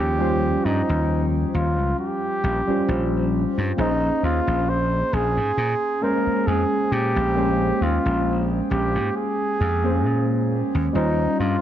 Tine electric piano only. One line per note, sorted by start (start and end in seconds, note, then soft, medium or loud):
0.00 0.15 F3 loud
0.00 0.15 C#4 medium
0.00 0.16 F4 medium
0.00 0.16 C5 loud
0.19 2.62 G3 loud
0.19 2.62 C#4 medium
0.19 2.63 F4 medium
0.19 2.63 C5 loud
2.67 3.73 G3 medium
2.67 3.73 C#4 medium
2.67 3.74 F4 medium
2.67 3.74 C5 loud
3.77 5.97 A#3 medium
3.77 5.97 C#4 medium
3.77 5.98 G#4 medium
3.77 5.98 C5 medium
6.01 7.32 G#3 medium
6.01 7.31 A#3 loud
6.01 7.32 C#4 medium
6.01 7.33 C5 loud
7.35 9.79 G#3 medium
7.35 9.78 A#3 loud
7.35 9.79 C#4 medium
7.35 9.80 C5 loud
9.83 10.89 A#3 medium
9.83 10.90 C#4 medium
9.83 10.90 G#4 medium
9.83 10.91 C5 loud
10.93 11.61 G3 medium
10.93 11.61 C#4 medium
10.93 11.61 F4 medium
10.93 11.61 C5 loud